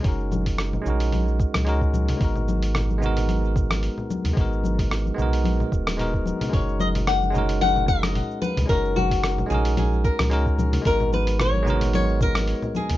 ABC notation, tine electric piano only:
X:1
M:4/4
L:1/8
Q:"Swing 16ths" 1/4=111
K:F#
V:1 name="Tine electric piano"
[G,CDFA]3 [G,CDFA]3 [G,CDFA]2 | [G,B,DFA]3 [G,B,DFA]4- [G,B,DFA] | [G,B,DFA]3 [G,B,DFA]3 [G,B,DFA]2 | [G,CDFA]3 [G,CDFA]4- [G,CDFA] |
[G,CDFA]3 [G,CDFA]3 [G,CDFA]2 | [G,B,DFA]3 [G,B,DFA]4- [G,B,DFA] |]